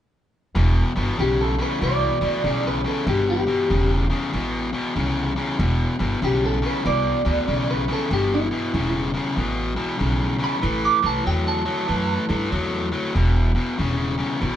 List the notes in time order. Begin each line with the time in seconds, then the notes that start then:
0.55 E1 E2 B2
0.96 G1 E2 B2
1.18 B1 E2 C#3 G4
1.41 A4
1.58 E2 C#3 B4
1.81 C2 E2 B2 D5
2.21 D2 E2 B2
2.44 B1 E2 C#3
2.67 B4
2.84 E2 C#3 A4
3.06 G1 E2 B2 G4
3.30 G4
3.47 E2 B2
3.69 E1 E2 C#3
4.10 E2 C#3
4.32 A1 E2 B2
4.73 E2 B2
4.96 C2 E2 C#3
5.36 E2 C#3
5.59 E1 E2 B2
5.99 G1 E2 B2
6.22 B1 E2 C#3 G4
6.45 A4
6.62 E2 C#3
6.66 B4
6.85 C2 E2 B2 D5
7.25 D2 E2 B2
7.47 B1 E2 C#3
7.71 B4
7.88 E2 C#3
7.93 A4
8.10 G1 E2 B2 G4
8.34 E4
8.51 E2 B2
8.74 E1 E2 C#3
9.14 E2 C#3
9.36 A1 E2 B2
9.76 E2 B2
9.98 B1 E2 C#3
10.38 E2 C#3
10.44 B5
10.61 A1 A2 E3
10.85 D6
11.02 C2 A2 E3 A5
11.25 E2 A2 F#3 G5
11.48 A5
11.65 A2 F#3
11.88 F#2 A2 E3
12.29 G2 A2 E3
12.51 E2 A2 F#3
12.92 A2 F#3
13.15 E1 E2 B2
13.55 E2 B2
13.78 E1 E2 C#3
14.18 E2 C#3
14.40 A1 E2 B2